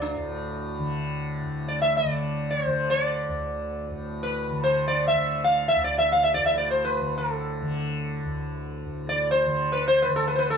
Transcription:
Already playing: D2 A2 D3
0.02 D4
0.16 A2
0.79 D3
1.42 A2
1.68 D5
1.82 E5
1.97 D5
2.04 D3
2.51 C#5
2.66 D3 C5
2.90 D5
3.28 D2
3.90 A2
4.23 B4
4.51 D3
4.64 C5
4.88 D5
5.08 E5
5.14 D3
5.44 F5
5.68 E5
5.75 D2
5.84 D5
5.98 E5
6.12 F5
6.23 E5
6.34 A2 D5
6.46 E5
6.53 E5
6.58 D5
6.71 C5
6.85 B4
7.00 D3
7.18 A#4
7.33 A4
7.62 D3
8.25 D2
8.85 A2
9.09 D5
9.31 C5
9.46 D3
9.72 B4
9.88 C5
10.02 B4
10.08 D3
10.16 A4
10.28 B4
10.35 B4 C5
10.50 A4

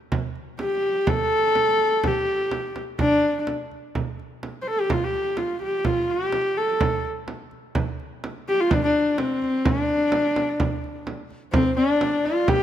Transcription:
0.12 frame drum
0.35 frame drum
0.59 G4, frame drum
1.07 A4, frame drum
1.32 frame drum
1.55 frame drum
1.79 frame drum
2.04 G4, frame drum
2.27 frame drum
2.51 frame drum
2.76 frame drum
2.99 D4, frame drum
3.23 frame drum
3.47 frame drum
3.71 frame drum
3.95 frame drum
4.19 frame drum
4.43 frame drum
4.62 C5
4.67 A4
4.80 G4
4.90 F4, frame drum
5.04 G4
5.14 frame drum
5.37 F4, frame drum
5.61 G4, frame drum
5.85 F4, frame drum
6.09 G4, frame drum
6.33 frame drum
6.57 A4
6.81 frame drum
7.05 frame drum
7.28 frame drum
7.51 frame drum
7.75 frame drum
7.99 frame drum
8.24 frame drum
8.48 G4
8.60 F4
8.71 D4, frame drum
8.83 D4
8.94 frame drum
9.18 C4, frame drum
9.42 frame drum
9.65 D4, frame drum
9.89 frame drum
10.12 frame drum
10.36 frame drum
10.60 frame drum
10.84 frame drum
11.07 frame drum
11.30 frame drum
11.52 C4 C5, frame drum
11.58 A4
11.64 C5
11.76 D4 D5, frame drum
12.01 frame drum
12.25 F4, frame drum
12.48 G4 G5, frame drum

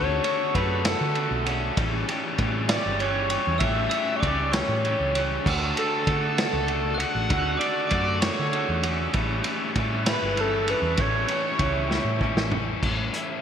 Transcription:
Already playing: D2 D3 A3 D4 F#4 A4 C#5 B5 C#6
0.24 A3 D4 F#4 A4 C#5 C#6, ride
0.54 F#2 D3 A3 D4 F#4 A4 B4 B5, kick, ride
0.85 A3 F#4 A4, snare, ride
0.89 D4 A5
1.01 D3
1.14 D3 A3, ride
1.19 D4 F#4 A4
1.31 B1
1.45 A3 C#4 F#4 A4, ride
1.50 D4 F#4
1.77 A1 A2 E3 G3 C#4 G4 E5 A5, kick, ride
2.08 G3 C#4 G4, ride
2.38 A2 E3 G3 C#4 G4, kick, ride
2.69 C#4 G4 D5 D6, snare, ride
2.73 G3
2.86 G1
2.99 E3 G3 C#4 C#5 C#6, ride
3.04 G4
3.30 C#4 G4, ride
3.35 G3
3.47 E2
3.58 A1 E5 E6, kick, ride
3.62 A2 E3 G3 C#4 G4
3.90 G4 E5 E6, ride
3.95 G3 C#4
4.16 C#5 D5 C#6
4.20 C#2 E3 D6, kick, ride
4.25 G3 C#4 G4
4.52 G4 C#5 C#6, snare, ride
4.56 G3 C#4
4.68 A2
4.85 E3 G3 C#4 G4, ride
5.00 C#2
5.15 G3 C#4 G4, ride
5.43 D2 D3 D4 F#4, kick, crash
5.48 A3 D4 F#4
5.76 A3 D4 F#4 A4 A5, ride
6.05 D3 A3 D4 A4 A5, kick, ride
6.10 F#4
6.38 A3 D4 F#4, snare, ride
6.53 C#2
6.68 D3 A3 D4 F#4, ride
6.95 F#5 F#6
7.00 A3 D4 F#4, ride
7.15 A1
7.30 D2 D3 A3 D4 F#4 B5, kick, ride
7.57 D5 D6, ride
7.62 A3 D4 F#4
7.87 F#2 D5 D6, ride
7.92 D3 A3 D4 F#4, kick
8.20 F#4 C#5 C#6, snare, ride
8.24 A3 D4
8.39 D3
8.53 D3 A3 D4, ride
8.57 F#4
8.69 E2
8.83 A3 C#4 D4 F#4, ride
9.14 A1 A2 E3 G3 C#4 E4 G4 E5 A5 C#6, kick, ride
9.44 C#4 E4, ride
9.49 G3
9.75 A2 E3 G3 C#4 E4, kick, ride
10.06 G3 C#4 E4 B5, snare, ride
10.13 B4
10.22 G1
10.36 E3 G3 C#4 E4 A5, ride
10.41 A4
10.68 G3 C#4 E4 B4 B5, ride
10.82 E2
10.97 A1 A2 E3 G3 C#4 C#5 G5 C#6, kick, ride
11.02 E4
11.28 C#4 E4, ride
11.32 G3
11.59 C#2 E3 G3 C#4, kick, ride
11.63 E4
11.90 G3 C#4 E4, snare
12.04 A2
12.21 E3 G3 C#4 E4, kick
12.35 A1, snare
12.52 G3 C#4 E4, floor tom
12.82 A1 A2 E3 G3 C#4 E4, kick, crash
13.13 G3 C#4 E4, closed hi-hat

